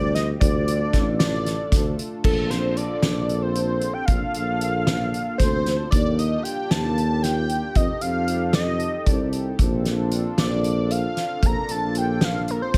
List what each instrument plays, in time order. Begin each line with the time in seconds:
Already playing: tuba D2, analog synth pad G3 C4 F4 G4, analog synth lead D5
0.15 analog synth lead D#5, snare, closed hi-hat
0.40 tuba D2, analog synth pad A3 D4 F4 A4, analog synth lead D5, kick, closed hi-hat
0.68 closed hi-hat
0.93 tuba A1, kick, snare, closed hi-hat
1.19 analog synth lead D5, snare, closed hi-hat
1.46 snare, closed hi-hat
1.72 tuba D2, kick, snare, closed hi-hat
1.99 closed hi-hat
2.23 tuba A#1, analog synth pad C4 D4 F4 A4, analog synth lead A4, kick, crash
2.50 analog synth lead C5, snare, closed hi-hat
2.77 analog synth lead D5, closed hi-hat
3.03 tuba A#1, snare, closed hi-hat
3.29 closed hi-hat
3.42 analog synth lead C5
3.55 closed hi-hat
3.81 closed hi-hat
3.93 analog synth lead G5
4.05 tuba A#1, analog synth pad A#3 D4 F4 A4, analog synth lead F5, kick, closed hi-hat
4.34 tuba A#1, closed hi-hat
4.61 closed hi-hat
4.87 snare, closed hi-hat
5.14 closed hi-hat
5.38 tuba D2, analog synth lead C5, kick, snare, closed hi-hat
5.66 snare, closed hi-hat
5.91 tuba D#2, analog synth pad A#3 D4 F4 G4, analog synth lead D5, kick, closed hi-hat
6.18 analog synth lead D#5, closed hi-hat
6.43 analog synth lead G5, closed hi-hat
6.70 tuba D#2, analog synth lead A5, snare, closed hi-hat
6.98 closed hi-hat
7.23 analog synth lead G5, snare, closed hi-hat
7.49 closed hi-hat
7.75 tuba F2, analog synth pad C4 D#4 G4 A4, analog synth lead D#5, kick, closed hi-hat
8.01 tuba F2, analog synth lead F5, closed hi-hat
8.28 closed hi-hat
8.53 analog synth lead D#5, snare, closed hi-hat
8.80 closed hi-hat
9.06 tuba C2, analog synth lead D5, kick, closed hi-hat
9.33 closed hi-hat
9.59 tuba A#1, analog synth pad C4 D4 F4 A4, kick, closed hi-hat
9.85 snare, closed hi-hat
10.11 closed hi-hat
10.38 tuba A#1, analog synth lead D5, snare, closed hi-hat
10.64 closed hi-hat
10.91 analog synth lead F5, closed hi-hat
11.17 snare, closed hi-hat
11.42 tuba A#1, analog synth pad A#3 D4 F4 A4, analog synth lead A#5, kick, closed hi-hat
11.69 tuba A#1, analog synth lead A5, closed hi-hat
11.95 analog synth lead G5, closed hi-hat
12.21 analog synth lead F5, snare, closed hi-hat
12.48 analog synth lead A#4, closed hi-hat
12.62 analog synth lead C5
12.74 tuba A#1, kick, snare, closed hi-hat